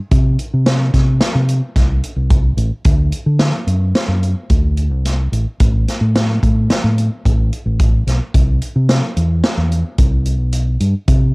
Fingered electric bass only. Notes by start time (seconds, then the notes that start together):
0.11 C3
0.54 C3
0.94 C3
1.35 C3
1.76 C2
2.16 C2
2.57 A1
2.85 D2
3.26 D3
3.67 F#2
4.08 F#2
4.50 D2
4.91 C2
5.32 A1
5.60 A1
6.01 A2
6.43 A2
6.84 A2
7.25 A1
7.66 A1
8.07 B1
8.34 C2
8.76 C3
9.17 E2
9.57 E2
9.98 C2
10.39 B1
10.80 G2
11.08 C3